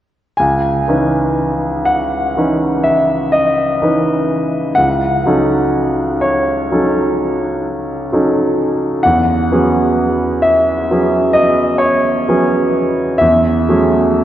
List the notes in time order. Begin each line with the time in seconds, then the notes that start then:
0.37 C#2 G#5
0.88 E3 C#4 D#4 B4
1.86 F#5
2.37 E3 C#4 D#4 B4
2.83 E5
3.32 D#5
3.82 E3 C#4 D#4 B4
4.75 C#2 F#5
5.26 F#3 C#4 D#4 A4
6.21 C#5
6.72 F#3 C#4 D#4 A4
8.12 F#3 C#4 D#4 A4
9.03 E2 F#5
9.52 F#3 B3 C#4 G#4
10.42 E5
10.90 F#3 B3 C#4 G#4
11.33 D#5
11.78 C#5
12.28 F#3 B3 C#4 G#4
13.18 E2 E5
13.69 F#3 A3 C#4 G#4